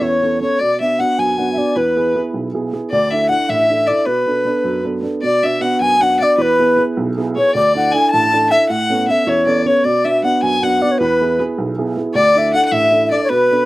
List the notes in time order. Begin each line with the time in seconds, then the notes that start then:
Already playing: B3 C#4 A4
0.01 E2 C#5
0.22 B3 C#4 A4
0.41 B3 C#4 A4 C#5
0.59 B2 D5
0.80 B3 D4 F#4 E5
0.99 B3 D4 F#4 F#5
1.18 F#2 G#5
1.38 B3 D4 F#4 F#5
1.53 B3 D4 E5
1.57 F#4 D5
1.76 E2 B4
1.96 B3 E4 G#4
2.15 B3 E4 G#4
2.34 B1
2.54 B3 E4 G#4
2.73 B3 E4 G#4
2.90 D2 D5
3.11 D4 E4 A4 E5
3.29 D4 E4 A4 F#5
3.49 A1 E5
3.70 D4 E4 A4
3.87 D4 E4 A4 D5
4.05 B2 B4
4.26 B3 D4 A4
4.45 B3 D4 A4
4.64 F#2
4.84 B3 D4 A4
5.02 B3 D4 A4
5.22 B2 D5
5.43 B3 D4 F#4 E5
5.61 B3 D4 F#4 F#5
5.80 F#2 G#5
6.00 B3 D4 F#4 F#5
6.20 B3 D4 F#4 D5
6.38 E2 B4
6.59 B3 E4 G#4
6.77 B3 E4 G#4
6.97 B1
7.17 B3 E4 G#4
7.36 B3 E4 G#4 C#5
7.53 D2 D5
7.75 D4 E4 A4 F#5
7.92 D4 E4 A4 G#5
8.11 A1 A5
8.33 D4 E4 A4
8.50 D4 E4 A4 E5
8.69 A2 F#5
8.90 B3 C#4 A4
9.08 B3 C#4 A4 E5
9.27 E2 C#5
9.46 B3 C#4 A4 D5
9.65 B3 C#4 A4 C#5
9.84 B2 D5
10.04 B3 D4 F#4 E5
10.23 B3 D4 F#4 F#5
10.42 F#2 G#5
10.62 B3 D4 F#4 F#5
10.82 B3 D4 F#4 D5
10.92 C#5
10.99 E2 B4
11.21 B3 E4 G#4
11.39 B3 E4 G#4
11.58 B1
11.78 B3 E4 G#4
11.97 B3 E4 G#4
12.14 D2 D5
12.35 D4 E4 A4 E5
12.54 D4 E4 A4 F#5
12.65 F#5
12.72 A1 E5
12.92 D4 E4 A4
13.06 E5
13.11 D4 E4 A4 D5
13.24 C#5
13.29 B2 B4
13.51 B3 D4 A4